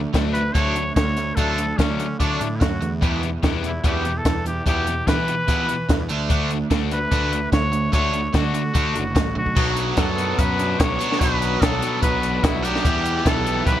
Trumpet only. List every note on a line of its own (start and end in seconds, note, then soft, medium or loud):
0.33 0.55 B4 medium
0.53 0.95 C#5 medium
0.95 1.37 C#5 medium
1.36 1.79 A4 medium
1.78 2.18 C#4 medium
2.19 2.57 D4 medium
2.56 2.62 E4 soft
2.60 2.91 F#4 medium
3.66 3.88 E4 medium
3.87 4.19 G4 medium
4.18 4.47 A4 medium
4.47 4.66 G4 medium
4.68 5.09 G4 medium
5.08 6.10 B4 loud
6.93 7.50 B4 medium
7.53 7.91 C#5 medium
7.94 8.37 C#5 loud
8.36 9.37 F#4 medium
9.38 9.76 F#4 medium
9.99 10.41 A4 medium
10.39 10.81 B4 medium
10.80 11.22 C#5 medium
11.20 11.63 B4 medium
11.61 12.02 A4 medium
12.02 12.46 B4 medium
12.45 12.65 E4 medium
12.64 13.28 G4 medium
13.27 13.66 A4 loud
13.66 13.80 B4 loud